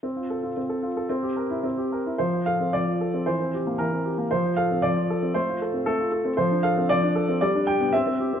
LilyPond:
\new Staff \with { instrumentName = "Grand piano" } { \time 2/4 \key f \major \tempo 4 = 115 << { r2 | r2 | c''8 f''8 d''4 | c''4 bes'4 |
c''8 f''8 d''4 | c''4 a'4 | \key d \dorian c''8 f''8 d''4 | d''8 g''8 e''4 | } \\ { c'16 f'16 a'16 f'16 c'16 a'16 f'16 a'16 | c'16 g'16 bes'16 e'16 c'16 g'16 bes'16 e'16 | f16 f'16 a'16 c'16 f16 f'16 a'16 c'16 | e16 c'16 g'16 bes16 e16 c'16 g'16 bes16 |
f16 f'16 a'16 c'16 f16 f'16 a'16 c'16 | a16 f'16 a'16 c'16 a16 f'16 a'16 c'16 | f16 d'16 a'16 c'16 f16 d'16 a'16 c'16 | g16 d'16 g'16 b16 c'16 c'16 g'16 c'16 | } >> }